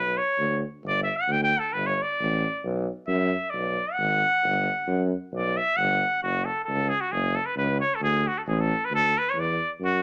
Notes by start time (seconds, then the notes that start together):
Already playing: B1 B4
0.18 C#5
0.38 D2
0.84 G1
0.88 D5
1.03 E5
1.17 F#5
1.28 D2
1.32 G5
1.44 G5
1.59 A4
1.73 G1 B4
1.87 C#5
2.02 D5
2.20 A1
2.64 B1
3.08 F#2 E5
3.50 B1 D5
3.93 F#5
3.99 G#1
4.43 G1
4.88 F#2
5.33 B1 D5
5.57 E5
5.77 G1 F#5
6.23 F#1 F#4
6.45 A4
6.65 C#2 A4
6.89 G#4
7.01 F#4
7.12 F#1 G#4
7.35 A4
7.46 B4
7.57 C#2 B4
7.81 C#5
7.95 A4
8.01 D2 G#4
8.28 F#4
8.38 A4
8.47 A1 G#4
8.60 A4
8.85 B4
8.91 D2
8.95 A4
9.18 B4
9.30 C#5
9.34 E2
9.40 D5
9.80 F#2
9.85 F#4